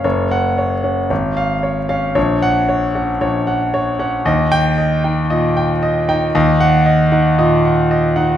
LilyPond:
<<
  \new Staff \with { instrumentName = "Grand piano" } { \time 4/4 \key fis \major \tempo 4 = 115 << { r8 fis''4 r4 eis''4 r8 | r8 fis''4 r2 r8 | \key ees \lydian r8 g''4 r2 r8 | r8 ges''4 r2 r8 | } \\ { cis''4 cis''8 fis''8 cis''4 cis''8 eis''8 | cis''4 cis''8 fis''8 cis''8 fis''8 cis''8 fis''8 | ees''4 ees''8 g''8 ees''8 g''8 ees''8 g''8 | ees''4 ees''8 ges''8 ees''8 ges''8 ees''8 ges''8 | } >> }
  \new Staff \with { instrumentName = "Grand piano" } { \clef bass \time 4/4 \key fis \major fis,,4. cis'8 gis,,4. cis'8 | ais,,4. cis'8 ais,,4. cis'8 | \key ees \lydian ees,4. ees'8 bes,8 r4 ees'8 | ees,4. ees'8 bes,8 r4 ees'8 | }
>>